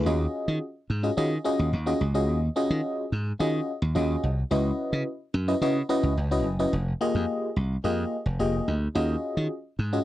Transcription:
0.06 D#2 C#4 F4 F#4 G#4 D#5
0.48 D#3
0.90 G#2
1.03 C#4 F4 F#4 G#4 D#5
1.17 D#3 C#4 F4 F#4 G#4 D#5
1.45 C#4 F4 F#4 G#4 D#5
1.59 D#2
1.73 D#2
1.86 C#4 F4 F#4 G#4 D#5
2.01 C#2
2.14 C#4 F4 F#4 G#4 D#5
2.29 D#2
2.56 C#4 F4 F#4 G#4 D#5
2.70 D#3
3.12 G#2
3.39 D#3 C#4 F4 F#4 G#4 D#5
3.82 D#2
3.95 D#2 C#4 F4 F#4 G#4 D#5
4.23 C2
4.51 C#2 C#4 E4 F#4 B4 D#5
4.93 C#3
5.34 F#2
5.48 C#4 E4 F#4 B4 D#5
5.61 C#3 C#4 E4 F#4 B4 D#5
5.89 C#4 E4 F#4 B4 D#5
6.03 C#2
6.17 C#2
6.31 C#4 E4 F#4 B4 D#5
6.45 F#1
6.59 C#4 E4 F#4 B4 D#5
6.73 F1
7.01 A#3 F4 G4 G#4 D#5
7.15 F2
7.56 C2
7.84 F2 A#3 F4 G4 G#4 D#5
8.26 F1
8.39 F1 A#3 F4 G4 G#4 D#5
8.68 D2
8.95 D#2 C#4 F4 F#4 G#4 D#5
9.37 D#3
9.79 G#2
9.93 C#4 F4 F#4 G#4 D#5

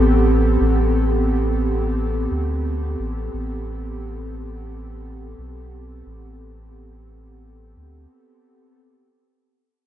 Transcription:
Already playing: A1 B3 C4 G4 A4
0.61 A1
2.31 D2
2.99 A1
3.33 A1
5.38 B1
6.06 A1
7.76 D2

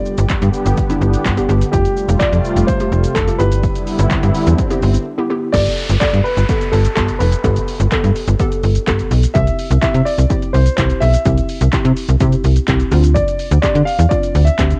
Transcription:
Already playing: D3 G3 B3 D4 G4 D5
0.06 shaker
0.18 G1, closed hi-hat, shaker
0.29 G2, kick, clap, closed hi-hat, shaker
0.42 G2, closed hi-hat, shaker
0.54 shaker
0.66 G1, closed hi-hat, shaker
0.77 kick, closed hi-hat, shaker
0.89 B3 D4 E4, closed hi-hat, shaker
1.01 G1, shaker
1.14 closed hi-hat, shaker
1.25 G1, kick, clap, closed hi-hat, shaker
1.37 B3 D4 G4, closed hi-hat, shaker
1.49 G1 B3 D4 G4, shaker
1.61 closed hi-hat, shaker
1.72 F1 C3 G3 A3 F4 G4, kick, closed hi-hat, swell, shaker
1.85 closed hi-hat, shaker
1.97 shaker
2.08 F1, closed hi-hat, shaker
2.19 F2 D5, kick, clap, closed hi-hat, shaker
2.32 F2, closed hi-hat, shaker
2.45 shaker
2.56 F1, closed hi-hat, shaker
2.67 C5, kick, closed hi-hat, shaker
2.80 A3 F4 G4, closed hi-hat, shaker
2.92 F1, shaker
3.04 closed hi-hat, shaker
3.15 F1 A4, kick, clap, closed hi-hat, shaker
3.27 A3 F4 G4, closed hi-hat, shaker
3.39 G1 D3 G3 B3 E4 G4 B4, shaker
3.52 closed hi-hat, shaker
3.63 kick, closed hi-hat, shaker
3.75 closed hi-hat, shaker
3.87 open hi-hat, shaker
3.99 G1, closed hi-hat, shaker
4.11 G2, kick, clap, closed hi-hat, shaker
4.23 G2, closed hi-hat, shaker
4.35 open hi-hat, shaker
4.47 E2, closed hi-hat, shaker
4.58 kick, closed hi-hat, shaker
4.70 B3 E4 G4, closed hi-hat, shaker
4.82 G1, open hi-hat, shaker
4.94 closed hi-hat, shaker
5.18 B3 E4 G4
5.30 B3 E4 G4
5.53 G1 B3 G4 A4 D5, kick, closed hi-hat, crash, downlifter, shaker
5.66 closed hi-hat, shaker
5.78 open hi-hat, shaker
5.89 G1, closed hi-hat, shaker
6.00 G2 B3 G4 A4 D5, kick, clap, closed hi-hat, shaker
6.13 G2, closed hi-hat, shaker
6.24 B4, open hi-hat, shaker
6.37 G1, closed hi-hat, shaker
6.49 B3 G4 A4, kick, closed hi-hat, shaker
6.61 closed hi-hat, shaker
6.72 G1 A4, open hi-hat, shaker
6.85 closed hi-hat, shaker
6.95 G1 B3 G4 A4, kick, clap, closed hi-hat, shaker
7.09 closed hi-hat, shaker
7.19 F1 B4, open hi-hat, shaker
7.32 closed hi-hat, shaker
7.44 G1 B3 G4 A4, kick, closed hi-hat, shaker
7.56 closed hi-hat, shaker
7.68 open hi-hat, shaker
7.80 G1, closed hi-hat, shaker
7.92 G2 B3 G4 A4, kick, clap, closed hi-hat, shaker
8.04 G2, closed hi-hat, shaker
8.16 open hi-hat, shaker
8.28 G1, closed hi-hat, shaker
8.39 B3 G4 A4, kick, closed hi-hat, shaker
8.52 closed hi-hat, shaker
8.63 G1, open hi-hat, shaker
8.75 closed hi-hat, shaker
8.87 G1 B3 G4 A4, kick, clap, closed hi-hat, shaker
8.99 closed hi-hat, shaker
9.11 B1, open hi-hat, shaker
9.23 closed hi-hat, shaker
9.34 C2 C4 E4 G4 E5, kick, closed hi-hat, shaker
9.47 closed hi-hat, shaker
9.59 open hi-hat, shaker
9.71 C2, closed hi-hat, shaker
9.82 C3 C4 E4 G4 E5, kick, clap, closed hi-hat, shaker
9.94 C3, closed hi-hat, shaker
10.05 D5, open hi-hat, shaker
10.18 C2, closed hi-hat, shaker
10.30 C4 E4 G4, kick, closed hi-hat, shaker
10.42 closed hi-hat, shaker
10.53 C2 C5, open hi-hat, shaker
10.66 closed hi-hat, shaker
10.76 C2 C4 E4 G4 C5, kick, clap, closed hi-hat, shaker
10.90 closed hi-hat, shaker
11.00 B1 E5, open hi-hat, shaker
11.14 closed hi-hat, shaker
11.25 C2 C4 E4 G4, kick, closed hi-hat, shaker
11.38 closed hi-hat, shaker
11.49 open hi-hat, shaker
11.61 C2, closed hi-hat, shaker
11.73 C3 C4 E4 G4, kick, clap, closed hi-hat, shaker
11.85 C3, closed hi-hat, shaker
11.97 open hi-hat, shaker
12.09 C2, closed hi-hat, shaker
12.20 C3 C4 E4 G4, kick, closed hi-hat, shaker
12.32 closed hi-hat, shaker
12.44 C2, open hi-hat, shaker
12.56 closed hi-hat, shaker
12.68 C2 C4 E4 G4, kick, clap, closed hi-hat, shaker
12.80 closed hi-hat, shaker
12.91 D2 C4 D4 F4, open hi-hat, shaker
13.04 closed hi-hat, shaker
13.14 D5, kick, closed hi-hat, shaker
13.28 closed hi-hat, shaker
13.39 open hi-hat, shaker
13.51 D2, closed hi-hat, shaker
13.62 D3 C4 D4 G4 D5, kick, clap, closed hi-hat, shaker
13.75 D3, closed hi-hat, shaker
13.85 F5, open hi-hat, shaker
13.99 E2, closed hi-hat, shaker
14.09 C4 D4 F4 D5, kick, closed hi-hat, shaker
14.23 closed hi-hat, shaker
14.35 D2, open hi-hat, shaker
14.45 E5, closed hi-hat, shaker
14.59 D2 C4 D4 G4, kick, clap, closed hi-hat, shaker
14.71 closed hi-hat, shaker

